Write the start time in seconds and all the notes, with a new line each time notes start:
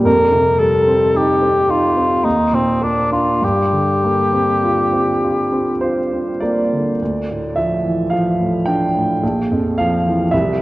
0.05 F2 A#4
0.32 C3
0.59 G3 A4
0.87 C4
1.14 D#4 G4
1.42 C4
1.68 D#4 F4
1.97 C4
2.24 D#2 D#4
2.53 A#2 C4
2.81 A#3 D4
3.11 D4 F4
3.42 G2 G4
3.73 D3
4.04 A#3
4.33 C4
4.64 F4
4.93 C4
5.24 F4
5.52 C4
5.81 F4 C5
6.13 C4
6.40 A#3 D5
6.73 D3
7.02 D2
7.30 A2
7.56 F3 E5
7.84 E3
8.10 F3 F5
8.40 A2
8.66 D4 G5
8.95 A2
9.23 A#1
9.52 F2
9.78 F3 F5
10.06 E3
10.31 C2 E5